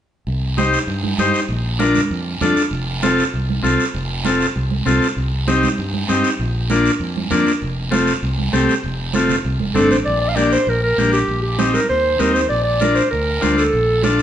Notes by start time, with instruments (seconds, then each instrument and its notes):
0.27 fingered electric bass C2, high conga, long guiro
0.57 transistor combo organ D#4 G4 C5, high conga, short guiro
0.73 short guiro
0.87 fingered electric bass G2, high conga, long guiro
1.03 high conga
1.18 fingered electric bass G2, transistor combo organ D#4 G4 C5, high conga, short guiro
1.34 short guiro
1.48 fingered electric bass A#1, high conga, long guiro
1.79 transistor combo organ D4 F4 A#4, high conga, short guiro
1.95 high conga, low conga, short guiro
2.10 fingered electric bass F2, high conga, long guiro
2.41 fingered electric bass F2, transistor combo organ D4 F4 A4, high conga, low conga, short guiro
2.56 short guiro
2.71 fingered electric bass F1, high conga, long guiro
3.03 transistor combo organ C4 F4 A4, high conga, short guiro
3.18 short guiro
3.33 fingered electric bass C2, high conga, long guiro
3.50 high conga
3.63 fingered electric bass C2, transistor combo organ C4 F4 A4, high conga, short guiro
3.80 short guiro
3.94 fingered electric bass F1, high conga, long guiro
4.25 transistor combo organ C4 F4 A4, high conga, short guiro
4.41 short guiro
4.56 fingered electric bass C2, high conga, long guiro
4.71 high conga
4.86 fingered electric bass C2, transistor combo organ C4 F4 A4, high conga, low conga, short guiro
5.02 short guiro
5.17 fingered electric bass C2, high conga, long guiro
5.47 transistor combo organ C4 D#4 G4, high conga, short guiro
5.63 high conga, short guiro
5.78 fingered electric bass G2, high conga, long guiro
5.93 high conga
6.08 fingered electric bass G2, transistor combo organ C4 D#4 G4, high conga, short guiro
6.24 short guiro
6.39 fingered electric bass A#1, high conga, long guiro
6.70 transistor combo organ A#3 D4 F4, high conga, short guiro
6.86 short guiro
7.00 fingered electric bass F2, high conga, long guiro
7.16 high conga
7.30 fingered electric bass F2, transistor combo organ A#3 D4 F4, high conga, low conga, short guiro
7.47 short guiro
7.61 fingered electric bass F1, high conga, long guiro
7.91 transistor combo organ A3 C4 F4, high conga, short guiro
8.07 short guiro
8.23 fingered electric bass C2, high conga, long guiro
8.38 high conga
8.53 fingered electric bass C2, transistor combo organ A3 C4 G4, high conga, short guiro
8.69 short guiro
8.83 fingered electric bass F1, high conga, long guiro
9.13 transistor combo organ A3 C4 F4, high conga, short guiro
9.29 low conga, short guiro
9.45 fingered electric bass C2, high conga, long guiro
9.60 fingered electric bass F1, high conga
9.74 fingered electric bass G1, transistor combo organ A3 C4 D4, clarinet A4, high conga, low conga, short guiro
9.91 fingered electric bass A1, clarinet C5, short guiro
10.05 fingered electric bass A#1, clarinet D5, high conga, long guiro
10.21 clarinet D5
10.28 clarinet F5
10.35 transistor combo organ A#3 D4 G4, clarinet D5, high conga, short guiro
10.52 clarinet C5, short guiro
10.67 fingered electric bass A#1, clarinet A#4, high conga, long guiro
10.83 clarinet A#4
10.98 fingered electric bass A#1, transistor combo organ A#3 D4 G4, high conga, short guiro
11.13 clarinet G4, short guiro
11.28 fingered electric bass A#1, high conga, long guiro
11.42 clarinet G4
11.58 transistor combo organ C4 D#4 G4, high conga, short guiro
11.74 clarinet A#4, high conga, short guiro
11.89 fingered electric bass D#2, clarinet C5, high conga, long guiro
12.19 fingered electric bass D#2, transistor combo organ C4 D#4 G4, clarinet A#4, high conga, short guiro
12.34 clarinet C5, short guiro
12.49 fingered electric bass A#1, clarinet D5, high conga, long guiro
12.64 clarinet D5
12.80 transistor combo organ D4 F4 A#4, high conga, short guiro
12.95 clarinet C5, short guiro
13.11 fingered electric bass D2, clarinet A#4, high conga, long guiro
13.41 fingered electric bass D2, transistor combo organ D4 F4 C5, high conga, short guiro
13.57 clarinet A4, short guiro
13.73 fingered electric bass A#1, high conga, long guiro
14.03 transistor combo organ D4 F4 A4, clarinet F4, high conga, short guiro